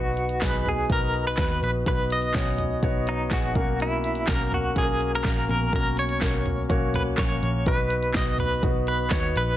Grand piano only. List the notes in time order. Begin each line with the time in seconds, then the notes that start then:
Already playing: B3 D#4 F#4 B4
0.41 B3 D#4 F#4 G#4
0.91 B3 D#4 F#4 D#5
1.38 B3 D#4 F#4 B4
1.87 B3 D#4 F#4 B4
2.35 B3 C#4 F#4 C#5
2.41 D#4
2.83 B3 D#4 F#4 C#5
3.32 B3 D#4 F#4 G#4
3.56 B2 A#3 C#4 F#4 A#4
4.28 A#3 C#4 F#4 A#4
4.76 A#3 C#4 F#4 G#4
4.83 A#4
5.24 A#3 C#4 F#4 A#4
5.49 B2
5.73 A#3 C#4 F#4 A#4
6.21 A#3 C#4 F#4 A#4
6.69 A#3 C#4 F#4 C#5
7.17 A#3 C#4 F#4 A#4
7.66 B3 D#4 F#4 B4
8.14 B3 D#4 F#4 B4
8.63 B3 D#4 F#4 B4
9.11 B3 D#4 F#4 B4